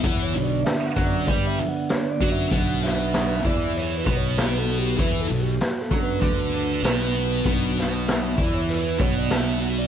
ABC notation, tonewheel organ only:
X:1
M:4/4
L:1/16
Q:1/4=97
K:Bm
V:1 name="Tonewheel organ"
(3f2 c2 d2 (3e2 f2 d2 (3d2 e2 f2 (3c2 d2 e2 | f2 e4 d2 (3c2 B2 c2 (3B2 A2 G2 | (3B2 A2 G2 (3F2 A2 B2- B8- | B z3 e2 d c B2 c d e2 f d |]
V:2 name="Tonewheel organ"
z2 [D,B,D]12- [D,B,D]2 | [F,B,D]6 z8 z2 | z6 [F,B,D]2 z8 | [F,B,D]2 z12 z2 |]